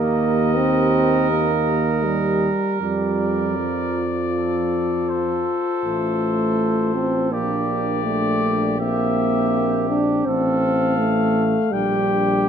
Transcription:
Already playing: tuba D#2, trombone A#3, french horn G4, trumpet A#4 D#5
0.58 trombone C4
1.31 trombone A#3
2.05 trombone G3
2.81 tuba F2, trombone G3, french horn F4, trumpet D5
3.57 trombone F3
4.35 trumpet A4
5.09 trumpet C5
5.84 tuba A1, trombone A3
6.95 trombone C4
7.32 tuba A#1, trombone A#3, french horn D4, trumpet G4 D5
8.05 trombone A3
8.79 trombone A#3, french horn C4, trumpet E5
9.90 trombone D4
10.26 tuba A1, trombone C4, trumpet A4 F5
10.99 trombone A3
11.72 tuba A#1, trombone G3, french horn D4, trumpet G4 G5

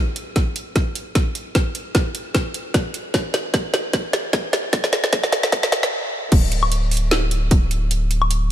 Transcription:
Already playing: sub bass D1
0.16 closed hi-hat
0.36 kick, snare, closed hi-hat
0.56 closed hi-hat
0.76 kick, snare, closed hi-hat
0.95 closed hi-hat
1.15 kick, snare, closed hi-hat
1.35 closed hi-hat
1.55 kick, snare, closed hi-hat
1.75 closed hi-hat
1.95 kick, snare, closed hi-hat
2.15 closed hi-hat
2.35 kick, snare, closed hi-hat
2.54 closed hi-hat
2.74 kick, snare, closed hi-hat
2.94 closed hi-hat
3.14 sub bass A1, kick, snare, closed hi-hat
3.34 snare, closed hi-hat
3.54 kick, snare, closed hi-hat
3.74 snare, closed hi-hat
3.93 kick, snare, closed hi-hat
4.13 snare, closed hi-hat
4.33 kick, snare, closed hi-hat
4.53 snare, closed hi-hat
4.73 sub bass E1, kick, snare, closed hi-hat
4.84 snare
4.93 snare, closed hi-hat
5.04 snare
5.13 kick, snare, closed hi-hat
5.24 snare
5.32 snare, closed hi-hat
5.43 snare
5.52 kick, snare, closed hi-hat
5.63 snare
5.72 snare, closed hi-hat
5.83 snare
6.32 sub bass D1, kick, closed hi-hat, crash
6.52 closed hi-hat
6.63 high woodblock
6.72 closed hi-hat
6.91 open hi-hat
6.97 closed hi-hat
7.11 snare, closed hi-hat
7.31 closed hi-hat
7.51 kick, closed hi-hat
7.71 closed hi-hat
7.91 closed hi-hat
8.11 closed hi-hat
8.22 high woodblock
8.31 closed hi-hat

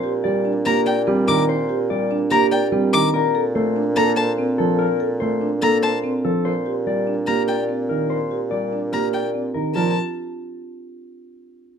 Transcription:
Already playing: bassoon A#2
0.04 marimba G4
0.24 grand piano G3, clean electric guitar D5
0.45 marimba D4
0.65 grand piano A#3, marimba G4, clean electric guitar A#4, violin A#5
0.86 clean electric guitar D5, violin G5
1.07 grand piano G3, marimba C4
1.28 grand piano D#3, clean electric guitar A#4, violin D6
1.49 clean electric guitar C5
1.69 marimba G4
1.90 grand piano G3, clean electric guitar D5
2.11 marimba D4
2.31 grand piano A#3, marimba G4, clean electric guitar A#4, violin A#5
2.51 clean electric guitar D5, violin G5
2.72 grand piano G3, marimba C4
2.93 grand piano D#3, clean electric guitar A#4, violin D6
3.14 bassoon A#2, clean electric guitar A#4
3.35 marimba A4
3.55 grand piano A3, clean electric guitar C5
3.76 marimba D4
3.96 grand piano A#3, clean electric guitar A4, marimba A4, violin A#5
4.16 clean electric guitar C5, violin A5
4.38 marimba C4
4.58 grand piano F3, clean electric guitar A4
4.79 clean electric guitar A#4
5.00 marimba A4
5.20 grand piano A3, clean electric guitar C5
5.41 marimba D4
5.62 grand piano A#3, marimba A4, clean electric guitar A4, violin A#5
5.83 clean electric guitar C5, violin A5
6.04 marimba C4
6.25 grand piano F3, clean electric guitar A4
6.45 bassoon A#2, clean electric guitar C5
6.66 marimba G4
6.87 grand piano G3, clean electric guitar D5
7.07 marimba D4
7.27 grand piano A#3, marimba G4, clean electric guitar A#4, violin A#5
7.48 clean electric guitar D5, violin G5
7.69 marimba C4
7.89 grand piano D#3, clean electric guitar A#4
8.10 clean electric guitar C5
8.31 marimba G4
8.51 grand piano G3, clean electric guitar D5
8.73 marimba D4
8.93 grand piano A#3, marimba G4, clean electric guitar A#4, violin A#5
9.13 clean electric guitar D5, violin G5
9.34 marimba C4
9.54 grand piano D#3, clean electric guitar A#4
9.75 bassoon A#2, grand piano F3, marimba F4, clean electric guitar A#4, violin A5

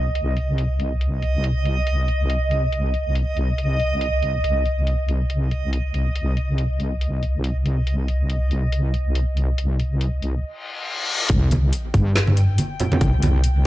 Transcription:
Already playing: wobble bass C2, synth texture D#5
0.15 closed hi-hat
0.37 closed hi-hat
0.58 closed hi-hat
0.80 closed hi-hat
1.01 closed hi-hat
1.22 closed hi-hat
1.44 closed hi-hat
1.65 closed hi-hat
1.87 closed hi-hat
2.08 closed hi-hat
2.30 closed hi-hat
2.51 closed hi-hat
2.73 closed hi-hat
2.94 closed hi-hat
3.15 closed hi-hat
3.37 closed hi-hat
3.58 closed hi-hat
3.80 closed hi-hat
4.01 closed hi-hat
4.23 closed hi-hat
4.44 wobble bass C2, closed hi-hat
4.66 closed hi-hat
4.87 closed hi-hat
5.09 closed hi-hat
5.30 closed hi-hat
5.51 closed hi-hat
5.73 closed hi-hat
5.94 closed hi-hat
6.16 closed hi-hat
6.37 closed hi-hat
6.58 closed hi-hat
6.80 closed hi-hat
7.01 closed hi-hat
7.23 closed hi-hat
7.44 closed hi-hat
7.66 closed hi-hat
7.87 closed hi-hat
8.08 closed hi-hat
8.30 closed hi-hat
8.51 closed hi-hat
8.72 closed hi-hat
8.94 closed hi-hat
9.15 closed hi-hat
9.37 closed hi-hat
9.58 closed hi-hat
9.80 closed hi-hat
10.01 closed hi-hat
10.22 closed hi-hat
10.44 reverse cymbal
11.29 wobble bass C2, synth texture G5, kick, closed hi-hat, sub drop
11.51 closed hi-hat, high conga
11.73 closed hi-hat
11.94 wobble bass G2, kick, closed hi-hat, high conga
12.16 snare, closed hi-hat
12.27 high conga
12.37 closed hi-hat
12.58 closed hi-hat, high conga
12.80 closed hi-hat, low conga
12.92 high conga, low conga
13.01 wobble bass C2, kick, closed hi-hat
13.22 wobble bass C2, closed hi-hat, high conga
13.44 closed hi-hat

